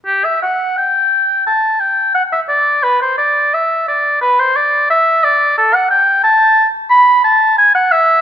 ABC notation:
X:1
M:4/4
L:1/16
Q:1/4=87
K:G
V:1 name="Oboe"
G e f2 g4 a2 g2 f e d2 | B c d2 e2 d2 B c d2 e2 d2 | A f g2 a3 z b2 a2 _a f e2 |]